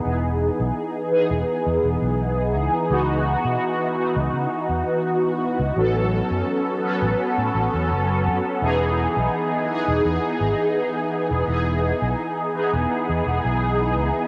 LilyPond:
<<
  \new Staff \with { instrumentName = "Analog polysynth" } { \time 4/4 \key e \major \tempo 4 = 84 <e b dis' gis'>8 r4 <e b dis' gis'>2~ <e b dis' gis'>8 | <e b dis' fis'>4. <e b dis' fis'>8 r2 | <fis b cis' a'>8 r4 <fis b cis' a'>2~ <fis b cis' a'>8 | <e b dis' gis'>4. <e b dis' gis'>8 r2 |
<e b dis' gis'>8 r4 <e b dis' gis'>2~ <e b dis' gis'>8 | }
  \new Staff \with { instrumentName = "Fingered electric bass" } { \clef bass \time 4/4 \key e \major e,,8 r16 b,,16 r8. e,,16 r16 e,16 e,,16 b,,8. cis,16 r16 | cis,8 r16 b,16 r8. cis,16 cis16 r16 e,16 r4 cis,16 | a,,8 r16 fis,16 r8. a,,16 r16 a,16 a,,16 e,16 fis,,8 fis,16 r16 | e,,8 r16 b,,16 r8. e,,16 e,16 r16 gis,,16 r4 e,,16 |
e,,8 r16 b,,16 r8. e,,16 r16 e,16 e,,16 b,,8. cis,16 r16 | }
>>